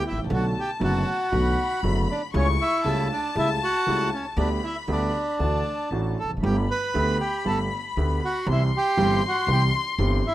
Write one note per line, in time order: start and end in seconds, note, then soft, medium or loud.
0.00 0.26 G5 medium
0.07 0.18 E4 medium
0.07 0.20 E5 medium
0.11 0.17 G#1 soft
0.11 0.18 G#1 soft
0.18 0.23 A1 medium
0.18 0.25 A1 medium
0.24 0.31 A#1 medium
0.24 0.29 A#1 medium
0.29 0.52 B1 medium
0.29 0.52 B2 medium
0.29 0.52 D3 medium
0.29 0.52 A3 soft
0.29 0.52 B3 medium
0.29 0.52 F#4 medium
0.29 0.44 F#4 medium
0.29 1.33 A5 medium
0.35 0.46 F#5 medium
0.59 0.70 G4 medium
0.59 0.71 G5 medium
0.80 1.02 F#1 medium
0.80 1.03 F#1 medium
0.80 1.02 F#2 medium
0.80 1.02 D3 medium
0.80 1.02 A3 medium
0.80 1.02 B3 medium
0.80 1.03 F#4 medium
0.80 1.80 F#4 medium
0.84 1.81 F#5 medium
1.32 1.54 B1 medium
1.32 1.54 B2 medium
1.32 1.54 D3 medium
1.32 1.54 A3 medium
1.32 1.54 B3 medium
1.32 1.54 F#4 medium
1.32 2.30 B5 medium
1.83 2.05 F#1 medium
1.83 2.05 F#2 medium
1.83 2.05 D3 medium
1.83 2.05 A3 medium
1.83 2.05 B3 medium
1.83 2.05 F#4 medium
2.11 2.22 D4 medium
2.11 2.22 D5 medium
2.33 2.55 C#2 medium
2.33 2.55 C#3 medium
2.33 2.55 G3 medium
2.33 2.56 A3 medium
2.33 2.47 C#4 medium
2.33 2.55 E4 medium
2.33 2.48 C#5 medium
2.33 2.81 C#6 loud
2.60 3.07 E4 medium
2.60 3.08 E5 medium
2.84 3.06 C#2 medium
2.84 3.07 C#2 medium
2.84 3.07 C#3 medium
2.84 3.07 G3 medium
2.84 3.07 A3 medium
2.84 3.06 E4 medium
2.84 4.37 A5 loud
3.12 3.35 D4 medium
3.12 3.35 D5 medium
3.35 3.57 C#2 medium
3.35 3.57 C#3 medium
3.35 3.57 G3 medium
3.35 3.57 A3 soft
3.35 3.57 E4 medium
3.35 3.49 E4 medium
3.35 3.50 E5 medium
3.63 4.09 F#4 medium
3.63 4.10 F#5 loud
3.86 4.08 C#2 medium
3.86 4.08 C#3 medium
3.86 4.08 G3 medium
3.86 4.08 A3 medium
3.86 4.08 E4 medium
4.14 4.25 C#4 medium
4.14 4.26 C#5 medium
4.37 4.58 D2 medium
4.37 4.59 D2 medium
4.37 4.59 D3 medium
4.37 4.59 G3 medium
4.37 4.59 B3 soft
4.37 4.49 D4 medium
4.37 4.59 G4 medium
4.37 4.50 D5 medium
4.37 5.40 B5 medium
4.64 4.75 E4 medium
4.64 4.77 E5 medium
4.88 5.09 D2 medium
4.88 5.10 D2 medium
4.88 5.10 D3 medium
4.88 5.10 G3 medium
4.88 5.10 B3 medium
4.88 5.89 D4 medium
4.88 5.10 G4 medium
4.92 5.90 D5 medium
5.39 5.61 D2 medium
5.39 5.61 D3 medium
5.39 5.61 E3 soft
5.39 5.61 A3 medium
5.39 5.61 D4 medium
5.39 5.62 F#4 medium
5.39 6.14 A5 medium
5.91 6.13 A1 medium
5.91 6.14 A1 medium
5.91 6.14 A2 medium
5.91 6.14 E3 medium
5.91 6.14 A3 medium
5.91 6.14 D4 medium
5.91 6.14 F#4 medium
6.19 6.31 A4 medium
6.19 6.32 A5 medium
6.24 6.30 E1 soft
6.24 6.31 E2 soft
6.30 6.36 F1 soft
6.30 6.37 F2 soft
6.37 6.43 F#1 medium
6.37 6.44 F#2 medium
6.42 6.65 G1 medium
6.42 6.65 G2 medium
6.42 6.65 D3 medium
6.42 6.65 A3 soft
6.42 6.65 B3 medium
6.42 6.65 G4 medium
6.42 6.56 G4 soft
6.42 6.57 G5 medium
6.42 8.44 B5 medium
6.71 7.18 B4 medium
6.71 7.18 B5 medium
6.94 7.16 D2 medium
6.94 7.16 D3 medium
6.94 7.16 A3 medium
6.94 7.16 B3 medium
6.94 7.17 G4 medium
7.20 7.44 G4 medium
7.20 7.45 G5 medium
7.45 7.67 G1 medium
7.45 7.68 G1 medium
7.45 7.67 G2 medium
7.45 7.67 D3 medium
7.45 7.67 A3 medium
7.45 7.67 B3 medium
7.45 7.68 G4 medium
7.45 7.59 A4 medium
7.45 7.58 A5 medium
7.97 8.18 D2 medium
7.97 8.19 D2 medium
7.97 8.19 D3 medium
7.97 8.19 A3 medium
7.97 8.19 B3 medium
7.97 8.19 G4 medium
8.25 8.47 F#4 medium
8.25 8.47 F#5 medium
8.46 8.68 C2 medium
8.46 8.69 C3 medium
8.46 8.68 E3 medium
8.46 8.69 G3 medium
8.46 8.69 C4 medium
8.46 8.69 G4 medium
8.46 10.35 C6 loud
8.51 8.62 E4 medium
8.51 8.63 E5 medium
8.76 9.22 G4 medium
8.76 9.23 G5 loud
8.97 9.19 G1 medium
8.97 9.19 G2 medium
8.97 9.19 E3 medium
8.97 9.19 G3 medium
8.97 9.19 C4 medium
8.97 9.19 G4 medium
9.28 9.49 F#4 medium
9.28 9.50 F#5 medium
9.47 9.69 C2 medium
9.47 9.70 C2 medium
9.47 9.70 C3 medium
9.47 9.70 E3 medium
9.47 9.70 G3 medium
9.47 9.70 C4 medium
9.47 9.70 G4 medium
9.52 9.63 G4 medium
9.52 9.63 G5 medium
9.98 10.20 G1 medium
9.98 10.21 G1 medium
9.98 10.21 G2 medium
9.98 10.21 E3 medium
9.98 10.21 G3 medium
9.98 10.21 C4 medium
9.98 10.21 G4 medium
10.27 10.35 E4 medium
10.27 10.35 E5 medium